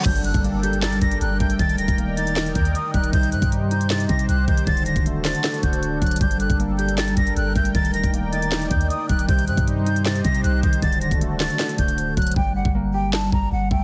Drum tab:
CC |x-------------------------------|--------------------------------|--------------------------------|--------------------------------|
HH |x-x-x-x-x---x-x-x-x-x-x-x---x-x-|x-x-x-x-x---x-x-x-x-x-x-x---x-x-|x-x-x-x-x---x-x-x-x-x-x-x---x-x-|x-x-x-x-x---o-x-x-x-x-x-x---xxxx|
CP |----------------x---------------|----------------x---------------|----------------x---------------|------------x---x---------------|
SD |----------------o---------------|----------------o---------------|----------------o---------------|------------o---o---------------|
BD |o-----o-------------o-------o---|o-----o-------------o-------o---|o-----o-------------o-------o---|o-----o-------------o-------o---|

CC |--------------------------------|--------------------------------|--------------------------------|--------------------------------|
HH |x-x-x-x-x---x-x-x-x-x-x-x---x-x-|x-x-x-x-x---x-x-x-x-x-x-x---x-x-|x-x-x-x-x---x-x-x-x-x-x-x---x-x-|x-x-x-x-x---o-x-x-x-x-x-x---xxxx|
CP |----------------x---------------|----------------x---------------|----------------x---------------|------------x---x---------------|
SD |----------------o---------------|----------------o---------------|----------------o---------------|------------o---o---------------|
BD |o-----o-------------o-------o---|o-----o-------------o-------o---|o-----o-------------o-------o---|o-----o-------------o-------o---|

CC |--------------------------------|
HH |--------------------------------|
CP |----------------x---------------|
SD |----------------o---------------|
BD |o-----o-------------o-------o---|